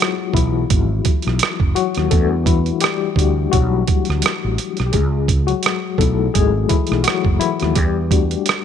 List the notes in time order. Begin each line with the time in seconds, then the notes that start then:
Already playing: F#3 G#3 B3 D#4 E4 F4 F#4 G#4
0.02 cross-stick
0.34 B1 E3 E4, kick, closed hi-hat
0.70 G#1, kick, closed hi-hat
1.05 kick, closed hi-hat
1.22 closed hi-hat
1.27 B1, cross-stick
1.39 cross-stick, closed hi-hat
1.60 F#1, kick
1.75 F#3 F#4, closed hi-hat
1.95 D#2, cross-stick, closed hi-hat
2.11 E2 G3 A3 D4 F#4 A4, kick, closed hi-hat
2.46 E3 E4, kick, closed hi-hat
2.66 closed hi-hat
2.81 G3 G4, cross-stick, closed hi-hat
3.16 D2 G3 A3 D4 F#4, kick, closed hi-hat
3.52 B1 F#3 F#4, kick, closed hi-hat
3.88 kick, closed hi-hat
4.05 closed hi-hat
4.09 D2, cross-stick
4.22 cross-stick, closed hi-hat
4.44 A1
4.58 closed hi-hat
4.77 B1, cross-stick, closed hi-hat
4.86 G4
4.92 C#2 G#3 G#4, kick, closed hi-hat
5.28 kick, closed hi-hat
5.47 F#3 F#4, closed hi-hat
5.63 cross-stick, closed hi-hat
5.98 B1 F#3 A3 B3 D#4 E4 A4, kick, closed hi-hat
6.34 G#1 G#3 G#4, kick, closed hi-hat
6.69 E3 E4, kick, closed hi-hat
6.87 closed hi-hat
6.91 B1, cross-stick
7.04 F#3 F#4, cross-stick, closed hi-hat
7.25 F#1, kick
7.40 E3 E4, closed hi-hat
7.60 D#2, cross-stick, closed hi-hat
7.75 E2 G3 G4, kick, closed hi-hat
8.11 G3 A3 D4 F#4, kick, closed hi-hat
8.31 closed hi-hat
8.46 cross-stick, closed hi-hat